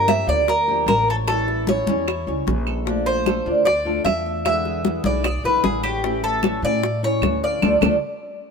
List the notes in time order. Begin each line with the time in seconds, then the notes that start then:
Already playing: G2
0.08 F3 A#3 D4 G4 E5, high bongo, high conga, claves
0.26 D2 F3 A#3 D4 G4 D5, high conga
0.47 A#4, muted nylon-string guitar stroke, high bongo, high conga
0.68 F3 A#3 D4 G4, high conga
0.86 A1 A#3 D4 G4 A#4, high bongo, low bongo, high conga, claves
1.08 A4 C#5
1.27 E3 G3 C#4 E4 A4, high bongo, high conga, claves
1.48 E4, high bongo, high conga
1.67 E3 G3 C#4 E4 C#5, high bongo, high conga
1.87 E2 G3 C#4 E4, high conga
2.07 E4, muted nylon-string guitar stroke, high bongo, high conga, claves
2.27 C#2 G3 C#4 E4 C#5, high bongo, high conga
2.46 A#1 E3 G3 C#4 E4, high bongo, low bongo, high conga
2.67 A4, high bongo, high conga, claves
2.85 F3 A3 D4 F4, high bongo, high conga
3.06 C5, high conga
3.26 F3 A3 D4 F4 A4, high bongo, high conga, claves
3.46 D2 A3 D4 F4 D5, high conga
3.65 D5, muted nylon-string guitar stroke, high bongo, high conga
3.85 A3 D4 F4 A4, high conga
4.05 E2 A3 D4 E5, high bongo, low bongo, high conga, claves
4.26 E5
4.44 B2 D3 G#3 B3 E4 E5, high bongo, high conga, claves
4.65 G#4, high bongo, high conga
4.84 D3 G#3 B3 E4, high bongo, high conga
5.03 B1 D3 G#3 B3 E4 D5, high conga
5.24 G#4 D5, muted nylon-string guitar stroke, high bongo, high conga, claves
5.43 B1 D3 G#3 B3 E4 B4 E5, high bongo, high conga
5.64 A1 D3 G#3 B3 E4 G#4, high bongo, low bongo, high conga
5.83 G4 C#5, high bongo, high conga, claves
6.03 E3 A3 C#4 E4, high bongo, high conga
6.23 A4, high conga
6.43 E3 A3 C#4 E4 C#5, high bongo, high conga, claves
6.62 A2 A3 C#4 E4 D5 E5, high conga
6.83 muted nylon-string guitar stroke, high bongo, high conga
7.03 A3 C#4 E4 C#5, high conga
7.21 D2 E3 A3 C#4, high bongo, low bongo, high conga, claves
7.25 E4
7.43 D5 F5
7.62 D2 F3 A3 D4 F4 A4 D5, low bongo, high conga, claves
7.81 D2 F3 A3 D4 F4 A4 D5, low bongo, high conga, claves